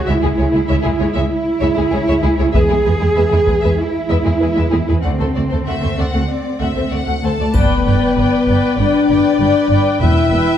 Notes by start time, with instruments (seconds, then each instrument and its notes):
0.07 double bass section C#2, viola section G#3, cello section E4, violin section C#5 E5
0.23 double bass section C#2, viola section G#3, violin section E4 G#4
0.38 double bass section C#2, viola section G#3, violin section G#4 C#5
0.53 double bass section C#2, viola section G#3, violin section E4 G#4
0.68 double bass section C#2, viola section G#3, violin section C#5 E5
0.84 double bass section C#2, viola section G#3, violin section E4 G#4
0.98 double bass section C#2, viola section G#3, violin section G#4 C#5
1.14 double bass section C#2, viola section G#3, violin section C#5 E5
1.31 cello section E4
1.60 double bass section C#2, viola section G#3, violin section C#5 E5
1.74 double bass section C#2, viola section G#3, violin section E4 G#4
1.90 double bass section C#2, viola section G#3, violin section G#4 C#5
2.07 double bass section C#2, viola section G#3, violin section C#5 E5
2.22 double bass section C#2, viola section G#3, violin section E4 G#4
2.37 double bass section C#2, viola section G#3, violin section G#4 C#5
2.52 double bass section E2, viola section G#3, cello section G#4, violin section B4 E5, taiko
2.68 double bass section E2, viola section G#3, violin section E4 G#4
2.85 double bass section E2, viola section G#3, violin section G#4 B4
2.99 double bass section E2, viola section G#3, violin section E4 G#4
3.15 double bass section E2, viola section G#3, violin section B4 E5
3.30 double bass section E2, viola section G#3, violin section E4 G#4
3.45 double bass section E2, viola section G#3, violin section G#4 B4, taiko
3.61 double bass section E2, viola section G#3, violin section B4 E5
3.78 cello section E4
4.08 double bass section E2, viola section G#3, violin section B4 E5
4.24 double bass section E2, viola section G#3, violin section E4 G#4
4.39 double bass section E2, viola section G#3, violin section G#4 B4
4.54 double bass section E2, viola section G#3, violin section B4 E5
4.70 double bass section E2, viola section G#3, violin section E4 G#4
4.87 double bass section E2, viola section G#3, violin section G#4 B4
5.02 double bass section D2, viola section A3, cello section C4, violin section D5 F#5
5.19 double bass section D2, viola section A3, violin section A4 C5
5.34 double bass section D2, viola section A3, violin section C5 D5
5.49 double bass section D2, viola section A3, violin section A4 C5
5.66 double bass section D2, viola section A3, violin section E5 F#5
5.81 double bass section D2, viola section A3, violin section C5
5.97 double bass section D2, viola section A3, violin section D5 F#5
6.12 double bass section D2, viola section A3, violin section F#5
6.29 violin section D5
6.60 double bass section D2, viola section A3, violin section E5 F#5
6.75 double bass section D2, viola section A3, violin section C5
6.91 double bass section D2, viola section A3, violin section D5 F#5
7.06 double bass section D2, viola section A3, violin section F#5
7.23 double bass section D2, viola section A3, french horn section A3, violin section A4 C5 A5
7.38 double bass section D2, viola section A3, violin section D5
7.54 double bass section G1, cello section G2, french horn section B3, viola section B4 D5, violin section B4 G5, taiko, impact, triangle
7.86 double bass section G1, cello section G2, viola section B4 D5, violin section G5
8.17 double bass section G1, cello section G2, viola section B4 D5, violin section G5
8.48 double bass section G1, cello section G2, viola section B4 D5, violin section G5
8.78 double bass section G1, cello section G2, french horn section D4, viola section B4 D5, violin section D5 G5
9.09 double bass section G1, cello section G2, viola section B4 D5, violin section G5
9.40 double bass section G1, cello section G2, viola section B4 D5, violin section G5
9.70 double bass section G1, cello section G2, viola section B4 D5, violin section G5
10.01 double bass section E1, timpani E2, cello section E2, french horn section E4, viola section B4 E5, violin section E5 G5
10.31 double bass section E1, cello section E2, viola section B4 E5, violin section G5